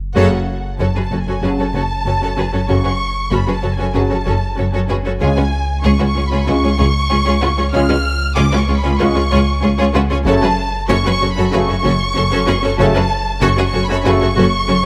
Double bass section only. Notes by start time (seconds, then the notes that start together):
0.16 F#1
0.79 F#1
1.11 F#1
1.42 F#1
1.74 F#1
2.06 F#1
2.37 F#1
2.69 F#1
3.32 F#1
3.63 F#1
3.95 F#1
4.27 F#1
4.58 F#1
4.89 F#1
5.21 C#2
5.84 C#2
6.16 C#2
6.48 C#2
6.79 C#2
7.11 C#2
7.43 C#2
7.74 C#2
8.37 C#2
8.69 C#2
9.00 C#2
9.31 C#2
9.63 C#2
9.94 C#2
10.26 F#1
10.89 F#1
11.21 F#1
11.53 F#1
11.85 F#1
12.16 F#1
12.48 F#1
12.80 F#1
13.42 F#1
13.75 F#1
14.06 F#1
14.37 F#1
14.69 F#1